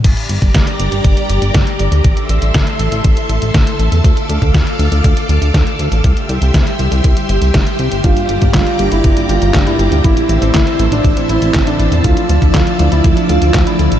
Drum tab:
CC |x---------------|----------------|----------------|----------------|
HH |xxxxxxxxxxxxxxxx|xxxxxxxxxxxxxxxx|xxxxxxxxxxxxxxxx|xxxxxxxxxxxxxxxx|
CP |----------------|----------------|----------------|----------------|
SD |----o-------o---|----o-------o---|----o-------o---|----o-------o---|
BD |o--oo---o---o---|o---o---o---o---|o--oo---o---o---|o---o---o---o---|

CC |----------------|----------------|----------------|
HH |xxxxxxxxxxxxxxxx|xxxxxxxxxxxxxxxx|xxxxxxxxxxxxxxxx|
CP |----x-------x---|----x-------x---|----x-------x---|
SD |----o-------o---|----o-------o---|----o-------o---|
BD |o--oo---o---o---|o---o---o---o---|o--oo---o---o---|